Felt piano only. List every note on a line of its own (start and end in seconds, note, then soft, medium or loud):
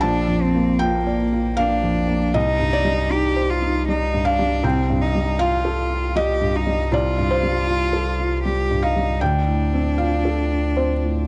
0.01 2.31 A#1 medium
0.01 0.75 A5 loud
0.28 0.70 F2 medium
0.55 0.96 A#3 medium
0.79 1.23 F4 medium
0.79 1.54 G5 loud
1.07 1.48 D5 medium
1.32 1.74 F4 medium
1.57 1.99 A#3 medium
1.57 2.30 F5 loud
1.83 2.24 F2 medium
2.08 2.34 A#3 medium
2.34 4.59 C2 medium
2.34 2.70 D#5 loud
2.59 3.01 G2 medium
2.73 4.22 D5 loud
2.85 3.26 G3 medium
3.10 3.52 D#4 medium
3.36 3.77 C5 medium
3.62 4.03 D#4 medium
3.88 4.29 G3 medium
4.14 4.54 G2 medium
4.25 4.61 F5 loud
4.39 4.64 G3 medium
4.63 6.88 C2 medium
4.63 5.36 G5 loud
4.90 5.30 G2 medium
5.15 5.56 G3 medium
5.39 5.81 F4 medium
5.39 6.12 F5 loud
5.65 6.06 A4 medium
5.90 6.31 F4 medium
6.16 6.56 G3 medium
6.16 6.88 D#5 loud
6.41 6.82 G2 medium
6.67 7.07 G3 medium
6.92 9.16 C2 medium
6.92 7.28 D5 loud
7.18 7.58 G2 medium
7.31 8.79 C5 loud
7.43 7.83 G3 medium
7.67 8.08 F4 medium
7.93 8.34 A4 medium
8.19 8.60 F4 medium
8.45 8.86 G3 medium
8.71 9.11 G2 medium
8.83 9.18 F5 medium
8.96 9.21 G3 medium
9.21 11.27 D2 medium
9.21 9.93 G5 loud
9.48 9.88 A2 soft
9.73 10.14 C4 medium
9.98 10.39 F4 medium
9.98 10.72 F5 medium
10.25 10.66 A4 medium
10.52 10.93 F4 soft
10.77 11.19 C4 soft
10.77 11.27 C5 medium
11.04 11.27 A2 soft